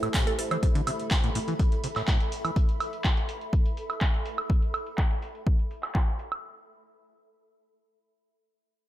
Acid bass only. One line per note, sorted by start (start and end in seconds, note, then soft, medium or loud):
0.03 0.09 A2 medium
0.14 0.25 A2 medium
0.51 0.57 E3 medium
0.63 0.67 A2 medium
0.75 0.82 D3 medium
0.87 0.91 C3 medium
1.24 1.30 A2 loud
1.35 1.39 A2 loud
1.48 1.54 E3 medium
1.60 1.64 A2 medium
1.84 1.88 C3 medium
1.96 2.03 A2 medium
2.08 2.18 A2 medium
2.45 2.51 E3 medium